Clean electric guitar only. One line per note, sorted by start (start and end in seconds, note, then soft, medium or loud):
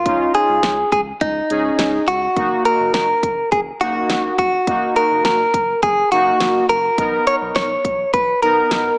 0.00 0.34 F4 medium
0.35 0.91 G#4 medium
0.92 1.00 G#4 medium
1.21 2.10 D#4 medium
2.08 2.65 F#4 medium
2.65 2.93 A#4 medium
2.94 3.52 A#4 medium
3.52 3.60 G#4 medium
3.81 4.37 F#4 medium
4.39 4.96 F#4 medium
4.96 5.24 A#4 medium
5.25 5.82 A#4 loud
5.83 6.11 G#4 medium
6.12 6.65 F#4 medium
6.69 7.27 A#4 loud
7.27 7.35 C#5 loud
7.56 8.13 C#5 loud
8.14 8.42 B4 loud
8.42 8.98 A#4 loud